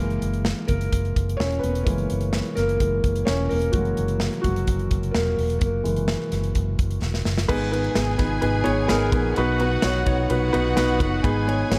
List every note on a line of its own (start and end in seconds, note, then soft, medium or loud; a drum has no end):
0.00 0.18 F#1 loud
0.00 1.81 E3 medium
0.00 1.82 G#3 soft
0.00 0.42 A#3 medium
0.00 0.41 A#4 medium
0.10 closed hi-hat soft
0.22 0.51 F#1 medium
0.22 closed hi-hat medium
0.33 closed hi-hat soft
0.45 snare medium
0.68 0.88 F#1 medium
0.68 1.36 A#3 medium
0.68 1.35 A#4 loud
0.68 kick medium
0.68 closed hi-hat medium
0.81 closed hi-hat soft
0.93 1.12 F#1 medium
0.93 kick medium
0.93 closed hi-hat medium
1.05 closed hi-hat soft
1.16 1.36 F#1 medium
1.16 kick medium
1.16 closed hi-hat medium
1.29 closed hi-hat soft
1.37 1.59 E1 medium
1.37 1.62 C#4 medium
1.37 1.62 C#5 medium
1.37 snare loud
1.52 closed hi-hat soft
1.59 1.83 B4 medium
1.63 1.83 E1 medium
1.63 1.85 B3 medium
1.63 closed hi-hat medium
1.75 closed hi-hat medium
1.83 2.06 F#1 medium
1.83 2.53 E3 medium
1.83 2.53 G#3 soft
1.83 2.53 A#3 medium
1.83 2.28 A#4 medium
1.83 kick medium
1.83 closed hi-hat medium
1.98 closed hi-hat soft
2.10 2.40 F#1 medium
2.10 closed hi-hat medium
2.21 closed hi-hat soft
2.33 snare loud
2.45 closed hi-hat soft
2.55 2.76 F#1 medium
2.55 2.79 A#3 medium
2.55 3.28 A#4 loud
2.55 snare soft
2.55 closed hi-hat medium
2.69 closed hi-hat soft
2.80 2.99 F#1 loud
2.80 3.01 E3 soft
2.80 3.01 G#3 soft
2.80 3.02 A#3 medium
2.80 kick medium
2.80 closed hi-hat medium
3.04 3.23 F#1 medium
3.04 kick medium
3.04 closed hi-hat medium
3.16 closed hi-hat soft
3.25 3.47 E1 medium
3.25 3.49 C#4 medium
3.25 3.50 C#5 medium
3.25 snare loud
3.49 3.71 E1 medium
3.49 3.73 A#3 medium
3.49 3.72 A#4 medium
3.49 open hi-hat medium
3.62 closed hi-hat medium
3.72 3.93 F#1 loud
3.72 4.40 E3 medium
3.72 4.41 F#3 medium
3.72 4.41 G#3 soft
3.72 4.41 A#3 medium
3.72 4.39 F#4 medium
3.72 kick loud
3.72 closed hi-hat medium
3.85 closed hi-hat soft
3.97 4.27 F#1 medium
3.97 closed hi-hat medium
4.08 closed hi-hat soft
4.20 snare medium
4.33 closed hi-hat soft
4.42 4.64 F#1 medium
4.42 5.11 F#3 medium
4.42 5.15 F#4 medium
4.42 kick medium
4.42 closed hi-hat medium
4.56 closed hi-hat soft
4.67 4.87 F#1 loud
4.67 kick medium
4.67 closed hi-hat medium
4.79 closed hi-hat soft
4.91 5.11 F#1 medium
4.91 kick medium
4.91 closed hi-hat medium
5.03 closed hi-hat soft
5.11 5.34 E1 medium
5.11 5.58 A#3 medium
5.11 5.56 A#4 medium
5.11 snare loud
5.39 5.58 E1 medium
5.39 open hi-hat medium
5.50 closed hi-hat medium
5.59 5.81 F#1 loud
5.59 5.83 A#3 medium
5.59 6.97 A#4 medium
5.59 kick loud
5.59 closed hi-hat medium
5.84 6.14 F#1 loud
5.84 6.51 E3 medium
5.84 6.51 G#3 soft
5.84 6.52 A#3 medium
5.84 closed hi-hat medium
5.96 closed hi-hat soft
6.08 snare loud
6.32 6.51 F#1 loud
6.32 snare soft
6.32 closed hi-hat medium
6.44 closed hi-hat medium
6.55 6.75 F#1 loud
6.55 kick medium
6.55 closed hi-hat medium
6.79 6.98 F#1 medium
6.79 kick medium
6.79 closed hi-hat medium
6.91 closed hi-hat soft
7.02 7.21 E1 medium
7.02 snare medium
7.14 snare medium
7.25 7.45 F#1 medium
7.25 snare medium
7.38 snare medium
7.48 7.88 G#1 loud
7.48 8.15 G#2 medium
7.48 7.69 B3 loud
7.48 7.70 D#4 loud
7.48 7.69 G#4 loud
7.48 9.33 G#4 medium
7.48 7.69 B4 loud
7.48 9.33 G#5 medium
7.48 kick loud
7.48 crash loud
7.71 7.92 B3 medium
7.71 7.93 D#4 medium
7.71 7.93 G#4 medium
7.71 7.93 B4 loud
7.71 ride medium
7.84 ride soft
7.95 8.15 G#1 loud
7.95 8.16 B3 medium
7.95 8.16 D#4 medium
7.95 8.16 G#4 medium
7.95 8.16 B4 loud
7.95 snare loud
7.95 ride medium
8.18 8.39 G#1 loud
8.18 8.39 B3 loud
8.18 8.39 D#4 medium
8.18 8.39 G#4 medium
8.18 8.39 B4 loud
8.18 kick medium
8.18 snare soft
8.18 ride medium
8.41 8.62 G#1 loud
8.41 8.62 B3 medium
8.41 8.62 D#4 medium
8.41 8.63 G#4 medium
8.41 8.63 B4 loud
8.41 ride medium
8.64 8.86 G#1 medium
8.64 8.86 B3 loud
8.64 8.86 D#4 loud
8.64 8.86 G#4 loud
8.64 8.86 C#5 loud
8.64 ride medium
8.88 9.09 G#1 loud
8.88 9.10 B3 loud
8.88 9.09 D#4 loud
8.88 9.09 G#4 loud
8.88 9.10 A#4 loud
8.88 snare loud
8.88 ride medium
9.12 9.32 A#1 loud
9.12 9.33 B3 loud
9.12 9.34 D#4 medium
9.12 9.33 G#4 medium
9.12 9.34 B4 loud
9.12 kick loud
9.12 ride medium
9.34 9.76 B1 loud
9.34 10.03 B2 medium
9.34 9.57 B3 loud
9.34 9.58 D#4 loud
9.34 10.27 F#4 medium
9.34 9.58 F#4 loud
9.34 9.58 B4 loud
9.34 10.27 F#5 medium
9.34 ride medium
9.60 9.81 B3 medium
9.60 9.81 D#4 medium
9.60 9.81 F#4 medium
9.60 9.81 B4 loud
9.60 ride medium
9.82 10.03 B1 loud
9.82 10.04 B3 loud
9.82 10.04 D#4 medium
9.82 10.04 F#4 medium
9.82 10.04 C#5 loud
9.82 snare loud
9.82 ride medium
10.06 10.26 B1 loud
10.06 10.27 B3 medium
10.06 10.27 D#4 medium
10.06 10.27 F#4 medium
10.06 10.27 C#5 loud
10.06 kick medium
10.06 ride medium
10.30 10.50 B1 loud
10.30 10.50 B3 loud
10.30 10.51 D#4 medium
10.30 10.51 F#4 medium
10.30 11.22 F#4 medium
10.30 10.51 B4 loud
10.30 11.22 F#5 loud
10.30 ride medium
10.52 10.73 B1 loud
10.52 10.74 B3 loud
10.52 10.74 D#4 loud
10.52 10.74 F#4 loud
10.52 10.74 B4 loud
10.52 ride medium
10.76 10.96 B1 loud
10.76 10.97 B3 loud
10.76 10.97 D#4 loud
10.76 10.97 F#4 loud
10.76 10.97 B4 loud
10.76 snare loud
10.76 ride medium
11.00 11.20 F#1 loud
11.00 11.21 B3 loud
11.00 11.21 D#4 medium
11.00 11.21 F#4 medium
11.00 11.21 B4 loud
11.00 kick loud
11.00 ride medium
11.24 11.63 G#1 loud
11.24 11.79 G#2 medium
11.24 11.44 B3 loud
11.24 11.44 D#4 loud
11.24 11.79 G#4 medium
11.24 11.45 G#4 loud
11.24 11.44 B4 loud
11.24 11.79 G#5 loud
11.24 kick loud
11.24 ride medium
11.47 11.68 B3 medium
11.47 11.68 D#4 medium
11.47 11.68 G#4 medium
11.47 11.68 C#5 loud
11.47 ride medium
11.70 11.79 G#1 loud
11.70 11.79 B3 medium
11.70 11.79 D#4 medium
11.70 11.79 G#4 medium
11.70 11.79 C#5 loud
11.70 snare loud
11.70 ride medium